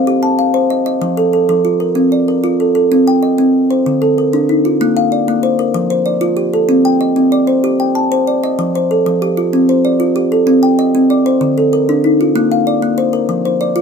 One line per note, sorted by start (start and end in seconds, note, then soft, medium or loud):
0.00 0.23 C5 medium
0.00 0.37 F5 medium
0.07 0.38 G4 medium
0.23 0.70 A5 medium
0.39 0.86 F5 medium
0.54 0.85 C5 medium
0.70 0.85 D#5 medium
0.86 1.17 D#5 medium
1.02 1.33 F3 medium
1.17 1.32 A4 medium
1.33 1.48 A4 medium
1.49 1.80 F3 medium
1.49 1.96 A4 medium
1.65 2.12 F4 medium
1.80 2.27 A#4 medium
1.95 2.27 C4 medium
2.12 2.59 D5 medium
2.28 2.75 A#4 medium
2.44 2.75 F4 medium
2.60 2.74 A4 medium
2.75 3.07 A4 medium
2.92 3.23 C4 medium
3.08 3.54 G5 medium
3.23 3.70 D#5 medium
3.38 3.70 C4 medium
3.71 4.02 C5 medium
3.86 4.18 D3 medium
4.02 4.49 A4 medium
4.18 4.65 A#4 medium
4.33 4.65 D4 medium
4.49 4.96 D#4 medium
4.65 4.96 F4 medium
4.81 5.12 A#3 medium
4.97 5.44 F5 medium
5.12 5.59 D5 medium
5.28 5.59 A#3 medium
5.43 5.89 C5 medium
5.59 5.91 A#4 medium
5.74 6.06 F3 medium
5.90 6.38 C5 medium
6.06 6.53 D5 medium
6.21 6.53 F4 medium
6.37 6.85 G4 medium
6.53 6.85 A4 medium
6.69 7.01 C4 medium
6.85 7.32 G5 medium
7.01 7.48 D#5 medium
7.16 7.48 C4 medium
7.32 7.80 D5 medium
7.47 7.95 C5 medium
7.64 7.95 G4 medium
7.80 8.27 G5 medium
7.95 8.43 A5 medium
8.12 8.43 C5 medium
8.27 8.74 D5 medium
8.44 8.75 D#5 medium
8.59 8.90 F3 medium
8.75 9.22 C5 medium
8.91 9.38 A4 medium
9.06 9.37 F3 medium
9.22 9.69 G4 medium
9.37 9.84 F4 medium
9.53 9.84 C4 medium
9.69 10.16 C5 medium
9.85 10.32 D5 medium
10.00 10.31 F4 medium
10.16 10.63 G4 medium
10.32 10.63 A4 medium
10.47 10.78 C4 medium
10.63 11.10 G5 medium
10.79 11.26 D#5 medium
10.95 11.26 C4 medium
11.10 11.57 D5 medium
11.26 11.57 C5 medium
11.41 11.72 D3 medium
11.58 12.04 A4 medium
11.73 12.20 A#4 medium
11.89 12.20 D4 medium
12.04 12.51 D#4 medium
12.21 12.51 F4 medium
12.36 12.67 A#3 medium
12.52 12.98 F5 medium
12.67 13.14 D5 medium
12.82 13.13 A#3 medium
12.98 13.44 C5 medium
13.13 13.44 A#4 medium
13.29 13.60 F3 medium
13.45 13.82 C5 medium
13.61 13.82 D5 medium
13.76 13.82 F4 medium